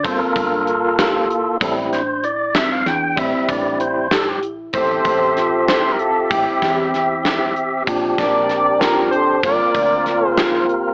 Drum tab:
HH |xxxxx|xxxxx|xxxxx|xxxxx|
SD |---o-|-o-oo|---o-|--oo-|
BD |oo---|o----|oo---|oo---|

HH |xxxxx|xxxxx|xxxxx|
SD |-ooo-|-ooo-|--oo-|
BD |oo---|oo---|oo---|